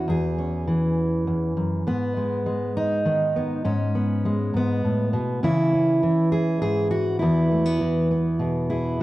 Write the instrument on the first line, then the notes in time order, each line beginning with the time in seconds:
steel-string acoustic guitar
Already playing: E3
0.08 E2 G#4
0.38 C#4
0.67 E3
1.27 E2
1.57 F#2
1.87 G#2 B3
2.17 G#3
2.46 G#3
2.77 D#4
3.05 D#3 B3
3.36 B3
3.65 G#2 C#4
3.95 B3
4.25 G#3
4.54 G#2 B3
4.85 A2
5.13 B2
5.43 C#3 E3 C#4 E4
5.74 C#4
6.03 E3
6.32 G#4
6.62 G#2 G#4
6.91 F#4
7.19 E2 E3 B3 E4
7.51 A3
7.66 B3
7.81 E3
8.11 B3
8.39 B2 G#4
8.70 E4 G#4